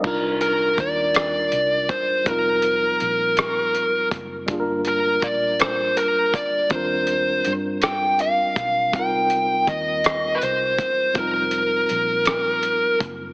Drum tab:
CC |x-----|------|------|------|
HH |-xxxxx|xxxxxx|xxxxxx|xxxxxx|
SD |---r--|---r--|---r--|---r--|
BD |o-o--o|o----o|o-o--o|o----o|

CC |------|------|
HH |xxxxxx|xxxxxx|
SD |---r--|---r--|
BD |o-o--o|o----o|